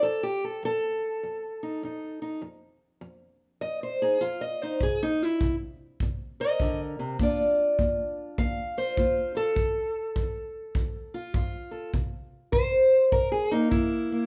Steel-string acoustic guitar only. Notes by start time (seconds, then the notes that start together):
0.03 F2 A4
0.23 G4
0.44 A4
0.63 F2 A4
1.23 F2
1.63 D#4
1.83 F2 D#4
2.22 D#4
2.42 F2
3.01 F2
3.61 F2 D#5
3.83 C5
4.02 D#4 G#4
4.21 F2 F4
4.41 D#5
4.62 D#4 C5
4.83 C3 G#4
5.03 D#4
5.23 E4
5.43 C3
6.03 C3
6.40 A#4 D#5
6.61 D3
6.99 C3
7.20 A#3 D4 F4 D5
7.79 A#3
8.38 A#3 F5
8.78 F4 C5
8.98 A#3 F4
9.35 F4 A4
9.55 F2
10.16 F2
10.76 F2
11.14 F4
11.34 F2 F4
11.71 A4
11.94 C3
12.52 C3 C5
13.12 C3 A#4
13.32 G#4
13.51 A#3 D#4
13.71 C3 E4
14.12 A#3